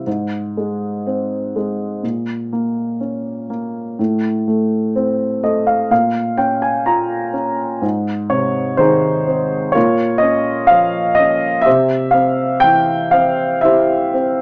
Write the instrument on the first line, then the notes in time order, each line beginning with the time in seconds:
grand piano
0.07 G#2
0.57 G#3
1.07 C4
1.56 G#3
2.03 A#2
2.53 A#3
3.00 C#4
3.50 A#3
3.99 A2
4.47 A3
4.96 C4
5.43 A3 D#5
5.67 F5
5.91 A#2 F5
6.38 C#4 G5
6.62 G#5
6.86 F4 A#5
7.33 C#4
7.82 G#2
8.30 C3 C#5
8.77 D#3 D#4 G#4 C5
9.27 C4
9.72 F4 A#4 C#5
9.76 A#2
10.18 D#5
10.22 C#4
10.67 F5
10.71 F3
11.15 D#5
11.19 C#4
11.61 G4 E5
11.66 C3 C5
12.11 C4 F5
12.60 E3 G5
13.11 C4 F5
13.61 E4 G4 C5 E5
14.14 C4